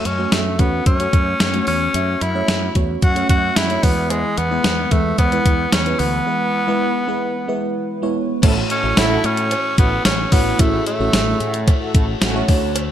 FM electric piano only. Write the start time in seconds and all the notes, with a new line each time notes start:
Already playing: A3 C#4 F#4 C#5
0.18 A3 C#4 F#4 C#5
0.58 A3 C#4 F#4 C#5
0.99 A3 C#4 F#4 C#5
1.53 A3 C#4 F#4 C#5
1.94 A3 C#4 F#4 E5
2.34 A3 C#4 F#4 C#5
2.75 A3 C#4 F#4 C#5
3.15 A3 C#4 F#4 C#5
3.69 A3 C#4 F#4 C#5
3.83 E3 G#3 B3 E4 B4
4.50 G#3 B3 E4 B4
4.91 G#3 B3 E4 B4
5.32 G#3 B3 E4 B4
5.86 G#3 B3 E4 B4
6.00 E3
6.26 G#3 B3 E4 B4
6.67 G#3 B3 E4 B4
7.07 G#3 B3 E4 B4
7.48 G#3 B3 E4 B4
8.02 G#3 B3 E4 C#5
8.42 A2 A3 E4 F#4 C#5
8.83 A3 E4 F#4 C#5
10.32 A3 E4 F#4 C#5
10.59 A2 A3 E4 F#4 G#4
10.99 A3 E4 F#4 C#5
12.35 A3 E4 F#4 C#5
12.48 D3 A3 D4 F#4 C#5